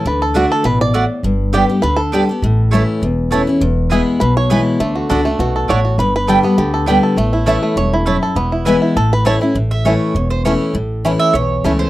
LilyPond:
<<
  \new Staff \with { instrumentName = "Mandolin" } { \time 4/4 \key a \mixolydian \tempo 4 = 202 r4 <a fis' d'' fis''>8 r4. <a fis' d'' fis''>8 r8 | r4 <b g' d'' g''>8 r4. <b g' d'' g''>8 r8 | r4 <a e' cis'' a''>8 r4. <a e' cis'' a''>8 r8 | r4 <b e' b' gis''>8 r4. <b e' b' gis''>8 r8 |
r4 <a fis' d'' fis''>8 r4. <a fis' d'' fis''>8 r8 | r4 <b g' d'' g''>8 r4. <b g' d'' g''>8 r8 | r4 <a e' cis'' a''>8 r4. <a e' cis'' a''>8 r8 | r4 <b e' b' gis''>8 r4. <a e' cis'' a''>8 r8 |
r8 e''8 cis''4. c''8 cis''4 | r4. e''8 cis''4. c''8 | }
  \new Staff \with { instrumentName = "Five-string banjo" } { \time 4/4 \key a \mixolydian << { b'8 a'8 fis'8 a'8 b'8 d''4. | r4 g'4 b'8 a'4.~ | a'4 r2. | r4 gis'4 b'8 cis''4.~ |
cis''4 r2 cis''4 | b'8 b'2~ b'8 r4 | r4 e''4 cis''8 e'4.~ | e'4 r4 a'8 b'8 cis''4 |
r4 <a cis' e'>8 r4. <a cis' e'>8 r8 | r4 <a cis' e'>8 r4. <a cis' e'>8 r8 | } \\ { r1 | r1 | r1 | r1 |
a8 fis'8 a'8 a8 fis'8 a'4 fis'8 | r4 a'8 b8 g'8 a'8 g'8 a'8 | a8 e'4 a4. e'8 a'8 | b8 e'8 e'8 e'8 r4. e'8 |
r1 | r1 | } >> }
  \new Staff \with { instrumentName = "Steel-string acoustic guitar" } { \time 4/4 \key a \mixolydian << { r4 <d a d' fis'>4 r2 | r4 <d g b g'>8 <b g'>8 r4 <d g b g'>8 <b g'>8 | r4 <e a cis' e'>4 r4 <e a cis' e'>8 <cis' e'>8 | r4 <e gis b e'>4 r4 <e gis b e'>4 |
r4 <d a d' fis'>8 <d' fis'>8 r2 | r4 <d g b g'>8 <b g'>8 r4 <d g b g'>4 | r4 <e a cis' e'>4 r2 | r4 <e gis b e'>4 r4 <e a cis' e'>8 <cis' e'>8 |
r4 <e a cis' e'>4 r4 <e a cis' e'>4 | r4 <e a cis' e'>4 r4 <e a cis' e'>4 | } \\ { d2 b,4 a,4 | g,2 d2 | a,2 e,2 | e,2 b,2 |
d2 b,4 a,4 | g,2 d2 | a,2 g,4 fis,4 | e,2 a,2 |
a,2 e,2 | a,2 e,2 | } >> }
  \new Staff \with { instrumentName = "Upright bass" } { \clef bass \time 4/4 \key a \mixolydian d,2 a,,2 | g,,2 d,2 | a,,2 e,,2 | e,,2 b,,2 |
d,4 cis,4 b,,4 a,,4 | g,,2 d,2 | a,,2 e,,2 | e,,2 a,,2 |
a,,2 e,,2 | a,,2 b,,4 cis,4 | }
>>